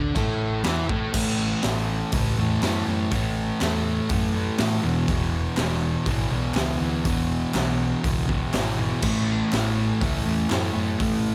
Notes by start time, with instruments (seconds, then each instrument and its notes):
Already playing: fingered electric bass D2, distorted electric guitar D3 D4
0.15 fingered electric bass A1, distorted electric guitar A2 A3, kick, clap, crash
0.64 fingered electric bass E2, distorted electric guitar E3 E4, snare, clap, crash
0.89 fingered electric bass A1, distorted electric guitar A2 A3, kick
1.13 fingered electric bass A1, distorted electric guitar A2 E3 A3, kick, crash
1.62 fingered electric bass A1, distorted electric guitar A2 E3 A3, snare, clap, open hi-hat
2.12 fingered electric bass C#2, distorted electric guitar A2 E3, kick, open hi-hat
2.16 distorted electric guitar A3
2.37 fingered electric bass E2, distorted electric guitar E3 A3
2.62 fingered electric bass F#2, distorted electric guitar A2 E3 A3, snare, clap, open hi-hat
2.87 fingered electric bass F#2, distorted electric guitar E3 A3
3.11 fingered electric bass A1, distorted electric guitar A2 E3 A3, kick, open hi-hat
3.60 fingered electric bass E2, distorted electric guitar A2 E3 A3, snare, clap, open hi-hat
4.09 fingered electric bass F#2, distorted electric guitar A2 E3 A3, kick, open hi-hat
4.34 distorted electric guitar E3 A3
4.58 fingered electric bass A2, distorted electric guitar A2 E3, snare, clap, open hi-hat
4.62 distorted electric guitar A3
4.82 fingered electric bass E1, distorted electric guitar E2 B2 E3
5.08 fingered electric bass E1, distorted electric guitar E2 B2 E3, kick, open hi-hat
5.57 fingered electric bass E1, distorted electric guitar E2 B2, snare, clap, open hi-hat
5.61 distorted electric guitar E3
6.06 fingered electric bass G#1, distorted electric guitar E2 B2, kick, open hi-hat
6.11 distorted electric guitar E3
6.31 fingered electric bass B1, distorted electric guitar E3
6.35 distorted electric guitar B2
6.54 fingered electric bass C#2, distorted electric guitar E2 B2, snare, clap, open hi-hat
6.59 distorted electric guitar E3
6.80 fingered electric bass D2, distorted electric guitar B2 E3
7.05 fingered electric bass E1, distorted electric guitar E2 B2 E3, kick, open hi-hat
7.54 fingered electric bass B1, distorted electric guitar E2 B2 E3, snare, clap, open hi-hat
8.04 fingered electric bass C#2, distorted electric guitar E2 B2 E3, kick, open hi-hat
8.28 distorted electric guitar B2 E3, kick
8.53 fingered electric bass G#1, distorted electric guitar E2 B2, snare, clap, open hi-hat
8.58 distorted electric guitar E3
8.78 distorted electric guitar B2 E3
9.02 fingered electric bass A1, distorted electric guitar A2 E3 A3, kick, crash
9.52 fingered electric bass A1, distorted electric guitar A2 E3 A3, snare, clap, open hi-hat
10.01 fingered electric bass C#2, distorted electric guitar A2 E3 A3, kick, open hi-hat
10.26 fingered electric bass E2, distorted electric guitar E3 A3
10.50 fingered electric bass F#2, distorted electric guitar A2 E3 A3, snare, clap, open hi-hat
10.73 fingered electric bass F#2, distorted electric guitar E3 A3
10.99 fingered electric bass A1, distorted electric guitar A2 E3 A3, kick, open hi-hat